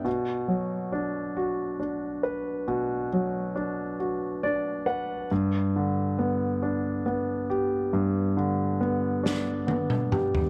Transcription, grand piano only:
\new Staff \with { instrumentName = "Grand piano" } { \time 6/8 \key b \minor \tempo 4. = 46 b,8 fis8 d'8 fis'8 d'8 b'8 | b,8 fis8 d'8 fis'8 <d' d''>8 <b' fis''>8 | g,8 d8 b8 d'8 b8 g'8 | g,8 d8 b8 d'8 b8 g'8 | }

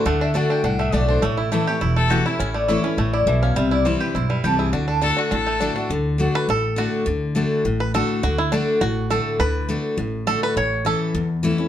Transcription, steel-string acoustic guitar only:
\new Staff \with { instrumentName = "Steel-string acoustic guitar" } { \time 4/4 \key d \major \tempo 4 = 206 << { r4 <d a d' fis'>4 r4 <d a d' fis'>4 | r4 <e a cis' e'>8 <cis' e'>8 r4 <e a cis' e'>8 <cis' e'>8 | r4 <e a cis' e'>8 <cis' e'>8 r2 | r4 <e g c' e'>8 <c' e'>8 r4 <e g c' e'>4 |
r4 <d a d' fis'>4 r4 <d a d' fis'>8 <d' fis'>8 | r4 <d a d' fis'>4 r4 <d a d' fis'>4 | r4 <d a d' fis'>4 r4 <d a d' fis'>4 | r4 <d a d' fis'>4 r4 <d a d' fis'>4 |
r4 <d a d' fis'>4 r4 <d a d' fis'>4 | r4 <e a cis' e'>4 r4 <e a cis' e'>8 <cis' e'>8 | } \\ { d2 a,2 | a,2 e,2 | a,2 a,4 b,4 | c2 g,2 |
d2 a,2 | d2 a,2 | d2 a,2 | d2 a,2 |
d2 a,2 | a,2 e,2 | } >> }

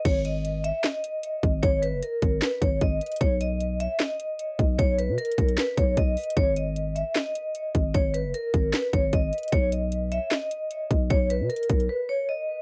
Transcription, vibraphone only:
\new Staff \with { instrumentName = "Vibraphone" } { \time 4/4 \key gis \minor \tempo 4 = 152 cis''8 dis''4 e''8 dis''2 | cis''8 b'8 ais'4 b'8 cis''8 dis''4 | cis''8 dis''4 e''8 dis''2 | cis''8 b'8 ais'4 b'8 cis''8 dis''4 |
cis''8 dis''4 e''8 dis''2 | cis''8 b'8 ais'4 b'8 cis''8 dis''4 | cis''8 dis''4 e''8 dis''2 | cis''8 b'8 ais'4 b'8 cis''8 dis''4 | }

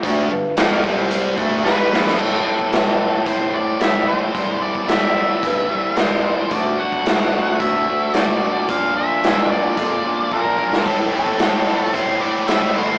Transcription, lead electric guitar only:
\new Staff \with { instrumentName = "Lead electric guitar" } { \time 4/4 \key a \dorian \tempo 4 = 111 r2. b'4 | a'8 a'4. c''8 d''8 e''8 c''8~ | c''8 d''8 e''2 c''4 | d''8 fis''4. e''4 d''4 |
f''8 e''4 d''4. bes'4 | a'8 a'4. c''8 d''8 e''8 c''8 | }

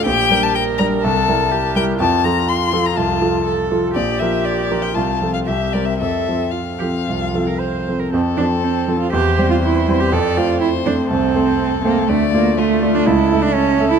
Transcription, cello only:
\new Staff \with { instrumentName = "Cello" } { \time 4/4 \key f \major \tempo 4 = 121 g'4 bes'4 a'4 g'4 | f'2. a'4 | g'2 f'4 g'4 | a'4 f'8 g'8 f'8. bes'16 c''8. bes'16 |
c'8 d'8 c'8. f'16 g'8. f'16 e'8. g'16 | a'8 f'8 e'8 d'8 c'4. bes8 | a8 bes8 a8. d'16 e'8. d'16 cis'8. e'16 | }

